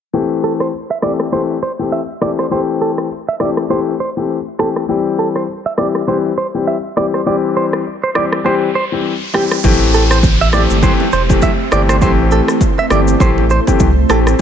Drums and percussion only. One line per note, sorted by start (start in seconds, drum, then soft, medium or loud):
0.60 cross-stick medium
1.02 cross-stick loud
1.20 cross-stick loud
2.22 cross-stick medium
2.39 cross-stick medium
2.98 cross-stick medium
3.40 cross-stick loud
3.57 cross-stick medium
4.59 cross-stick medium
4.76 cross-stick medium
5.36 cross-stick medium
5.78 cross-stick loud
5.95 cross-stick medium
6.97 cross-stick medium
7.14 cross-stick medium
7.73 cross-stick medium
8.15 cross-stick loud
8.32 cross-stick medium
9.34 cross-stick medium
9.51 cross-stick medium
9.64 kick loud
9.64 low conga medium
9.64 shaker medium
9.93 shaker medium
10.11 cross-stick medium
10.11 shaker medium
10.23 kick loud
10.23 high bongo medium
10.23 shaker medium
10.53 cross-stick loud
10.53 high bongo medium
10.53 low bongo medium
10.53 shaker medium
10.70 high bongo medium
10.70 shaker medium
10.82 kick loud
10.82 low conga medium
10.82 shaker medium
11.00 low bongo medium
11.12 shaker soft
11.29 kick medium
11.29 low bongo medium
11.29 shaker medium
11.42 kick medium
11.42 high bongo medium
11.42 low conga medium
11.42 shaker medium
11.72 cross-stick loud
11.72 shaker medium
11.89 cross-stick medium
11.89 shaker medium
12.02 kick loud
12.02 low conga medium
12.02 shaker medium
12.31 shaker soft
12.48 cross-stick medium
12.48 shaker medium
12.61 kick loud
12.61 high bongo medium
12.61 shaker medium
12.90 cross-stick loud
12.90 high bongo medium
12.90 low bongo medium
12.90 shaker medium
13.08 high bongo medium
13.08 shaker medium
13.20 kick loud
13.20 low conga medium
13.20 shaker medium
13.38 low bongo medium
13.50 shaker soft
13.67 kick medium
13.67 low bongo medium
13.67 shaker medium
13.80 kick medium
13.80 high bongo medium
13.80 low conga medium
13.80 shaker medium
14.10 cross-stick loud
14.10 shaker medium
14.27 cross-stick medium
14.27 shaker medium